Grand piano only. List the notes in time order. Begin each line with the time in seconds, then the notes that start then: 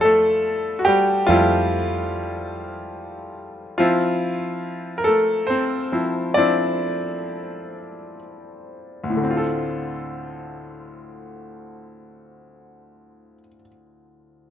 Already playing: F3 G3 A3 E4 F4
0.01 A3 A4
0.79 F#4
0.85 G3 G4
1.27 F3 G3 A3 E4 F4
3.78 F3 C4 E4 F4
4.98 A#4
5.04 A3 A4
5.47 C4 C5
5.92 F3 C4 E4
6.34 F3 C4 D4 E4 D5
9.04 D2
9.10 A2
9.17 D3
9.24 C4
9.30 F4
9.37 A4